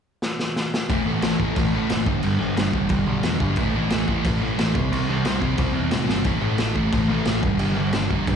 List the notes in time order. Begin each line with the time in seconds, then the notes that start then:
0.22 snare
0.40 snare
0.56 snare
0.74 snare
0.89 A1 A2 E3 A3, kick, crash
1.06 A1 A2 E3 A3
1.22 A1 A2 E3 A3, snare, crash
1.39 A1 A2 E3 A3, kick
1.56 A1 A2 E3 A3, kick, crash
1.73 A1 A2 E3 A3
1.90 F#1 A2 E3 A3, snare, crash
2.06 G1 G2 D3 G3, kick
2.23 G1 G2 D3 G3, crash
2.40 G1 G2 D3 G3
2.56 G1 G2 D3 G3, snare, crash
2.73 G1 G2 D3 G3, kick
2.89 G1 G2 D3 G3, kick, crash
3.06 B1 G2 D3 G3
3.23 E2 G2 D3 G3, snare, crash
3.40 B1 G2 D3 G3, kick
3.56 A1 A2 E3 A3, kick, crash
3.73 A1 A2 E3 A3
3.90 A1 A2 E3 A3, snare, crash
4.08 A1 A2 E3 A3, kick
4.25 A1 A2 E3 A3, kick, crash
4.40 A1 A2 E3 A3
4.58 A1 A2 E3 A3, snare, crash
4.75 C2 C3 G3 C4, kick
4.92 C2 C3 G3 C4, crash
5.09 C2 C3 G3 C4
5.25 C2 C3 G3 C4, snare, crash
5.41 C2 C3 G3 C4, kick
5.57 C2 C3 G3 C4, kick, crash
5.73 E2 C3 G3 C4
5.90 A2 C3 G3 C4, snare, crash
6.06 G1 C3 G3 C4, snare
6.24 A1 A2 E3 A3, kick, crash
6.41 A1 A2 E3 A3
6.58 A1 A2 E3 A3, snare, crash
6.75 A1 A2 E3 A3, kick
6.92 A1 A2 E3 A3, kick, crash
7.08 A1 A2 E3 A3
7.25 A1 A2 E3 A3, snare, crash
7.42 G1 G2 D3 G3, kick
7.59 G1 G2 D3 G3, crash
7.77 G1 G2 D3 G3
7.93 G1 G2 D3 G3, snare, crash
8.10 G1 G2 D3 G3, kick
8.27 G1 G2 D3 G3, kick, crash